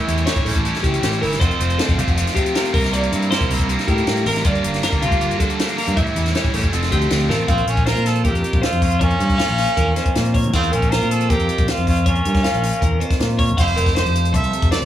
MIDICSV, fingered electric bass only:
0, 0, Header, 1, 2, 480
1, 0, Start_track
1, 0, Tempo, 380469
1, 1776, Time_signature, 4, 2, 24, 8
1, 18735, End_track
2, 0, Start_track
2, 0, Title_t, "Fingered electric bass"
2, 0, Program_c, 0, 33
2, 95, Note_on_c, 0, 40, 78
2, 304, Note_off_c, 0, 40, 0
2, 457, Note_on_c, 0, 33, 75
2, 561, Note_off_c, 0, 33, 0
2, 579, Note_on_c, 0, 33, 84
2, 682, Note_off_c, 0, 33, 0
2, 700, Note_on_c, 0, 33, 69
2, 907, Note_off_c, 0, 33, 0
2, 1058, Note_on_c, 0, 37, 76
2, 1274, Note_off_c, 0, 37, 0
2, 1298, Note_on_c, 0, 33, 83
2, 1514, Note_off_c, 0, 33, 0
2, 1538, Note_on_c, 0, 31, 77
2, 1753, Note_off_c, 0, 31, 0
2, 1780, Note_on_c, 0, 29, 88
2, 1883, Note_off_c, 0, 29, 0
2, 2010, Note_on_c, 0, 29, 77
2, 2221, Note_off_c, 0, 29, 0
2, 2380, Note_on_c, 0, 29, 80
2, 2489, Note_off_c, 0, 29, 0
2, 2489, Note_on_c, 0, 36, 83
2, 2596, Note_off_c, 0, 36, 0
2, 2621, Note_on_c, 0, 29, 81
2, 2827, Note_off_c, 0, 29, 0
2, 3460, Note_on_c, 0, 36, 95
2, 3874, Note_off_c, 0, 36, 0
2, 3936, Note_on_c, 0, 43, 90
2, 4144, Note_off_c, 0, 43, 0
2, 4300, Note_on_c, 0, 36, 75
2, 4401, Note_off_c, 0, 36, 0
2, 4412, Note_on_c, 0, 36, 77
2, 4517, Note_off_c, 0, 36, 0
2, 4534, Note_on_c, 0, 36, 73
2, 4742, Note_off_c, 0, 36, 0
2, 4897, Note_on_c, 0, 45, 91
2, 5104, Note_off_c, 0, 45, 0
2, 5131, Note_on_c, 0, 45, 80
2, 5340, Note_off_c, 0, 45, 0
2, 5372, Note_on_c, 0, 33, 87
2, 5580, Note_off_c, 0, 33, 0
2, 5614, Note_on_c, 0, 31, 84
2, 5717, Note_off_c, 0, 31, 0
2, 5852, Note_on_c, 0, 31, 83
2, 6060, Note_off_c, 0, 31, 0
2, 6212, Note_on_c, 0, 31, 72
2, 6339, Note_on_c, 0, 38, 88
2, 6358, Note_off_c, 0, 31, 0
2, 6440, Note_off_c, 0, 38, 0
2, 6454, Note_on_c, 0, 31, 72
2, 6661, Note_off_c, 0, 31, 0
2, 7414, Note_on_c, 0, 43, 79
2, 7516, Note_off_c, 0, 43, 0
2, 7534, Note_on_c, 0, 33, 88
2, 7636, Note_off_c, 0, 33, 0
2, 7768, Note_on_c, 0, 40, 83
2, 7977, Note_off_c, 0, 40, 0
2, 8128, Note_on_c, 0, 33, 74
2, 8233, Note_off_c, 0, 33, 0
2, 8252, Note_on_c, 0, 33, 87
2, 8355, Note_off_c, 0, 33, 0
2, 8370, Note_on_c, 0, 30, 79
2, 8474, Note_off_c, 0, 30, 0
2, 8483, Note_on_c, 0, 29, 75
2, 8694, Note_off_c, 0, 29, 0
2, 8732, Note_on_c, 0, 38, 74
2, 8939, Note_off_c, 0, 38, 0
2, 8965, Note_on_c, 0, 38, 73
2, 9175, Note_off_c, 0, 38, 0
2, 9194, Note_on_c, 0, 33, 96
2, 9409, Note_off_c, 0, 33, 0
2, 9447, Note_on_c, 0, 34, 89
2, 9657, Note_off_c, 0, 34, 0
2, 9670, Note_on_c, 0, 34, 76
2, 9991, Note_off_c, 0, 34, 0
2, 10039, Note_on_c, 0, 46, 61
2, 10405, Note_on_c, 0, 41, 77
2, 10424, Note_off_c, 0, 46, 0
2, 10616, Note_off_c, 0, 41, 0
2, 10767, Note_on_c, 0, 34, 80
2, 10873, Note_off_c, 0, 34, 0
2, 11004, Note_on_c, 0, 41, 75
2, 11529, Note_off_c, 0, 41, 0
2, 11601, Note_on_c, 0, 43, 75
2, 11815, Note_off_c, 0, 43, 0
2, 11970, Note_on_c, 0, 34, 79
2, 12180, Note_off_c, 0, 34, 0
2, 12330, Note_on_c, 0, 40, 80
2, 12540, Note_off_c, 0, 40, 0
2, 12819, Note_on_c, 0, 46, 87
2, 13183, Note_on_c, 0, 40, 76
2, 13202, Note_off_c, 0, 46, 0
2, 13492, Note_off_c, 0, 40, 0
2, 13547, Note_on_c, 0, 34, 87
2, 13855, Note_off_c, 0, 34, 0
2, 13902, Note_on_c, 0, 46, 78
2, 14257, Note_on_c, 0, 41, 81
2, 14276, Note_off_c, 0, 46, 0
2, 14465, Note_off_c, 0, 41, 0
2, 14618, Note_on_c, 0, 34, 86
2, 14722, Note_off_c, 0, 34, 0
2, 14861, Note_on_c, 0, 41, 73
2, 15380, Note_off_c, 0, 41, 0
2, 15464, Note_on_c, 0, 43, 75
2, 15669, Note_off_c, 0, 43, 0
2, 15816, Note_on_c, 0, 34, 70
2, 16025, Note_off_c, 0, 34, 0
2, 16174, Note_on_c, 0, 40, 82
2, 16383, Note_off_c, 0, 40, 0
2, 16656, Note_on_c, 0, 46, 81
2, 17022, Note_on_c, 0, 31, 75
2, 17041, Note_off_c, 0, 46, 0
2, 17124, Note_off_c, 0, 31, 0
2, 17133, Note_on_c, 0, 29, 90
2, 17342, Note_off_c, 0, 29, 0
2, 17372, Note_on_c, 0, 29, 89
2, 17685, Note_off_c, 0, 29, 0
2, 17728, Note_on_c, 0, 41, 72
2, 18088, Note_on_c, 0, 36, 76
2, 18107, Note_off_c, 0, 41, 0
2, 18298, Note_off_c, 0, 36, 0
2, 18450, Note_on_c, 0, 29, 89
2, 18555, Note_off_c, 0, 29, 0
2, 18694, Note_on_c, 0, 36, 77
2, 18735, Note_off_c, 0, 36, 0
2, 18735, End_track
0, 0, End_of_file